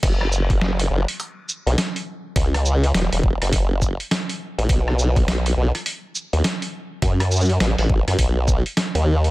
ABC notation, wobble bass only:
X:1
M:4/4
L:1/16
Q:"Swing 16ths" 1/4=103
K:F#dor
V:1 name="Wobble bass" clef=bass
F,,,6 F,,, z4 B,,, z4 | C,,4 E,,, E,,, E,,, F,,,4 z4 A,,, | B,,,6 B,,, z4 D,, z4 | F,,4 A,,, A,,, A,,, F,, B,,,3 z2 D,,3 |]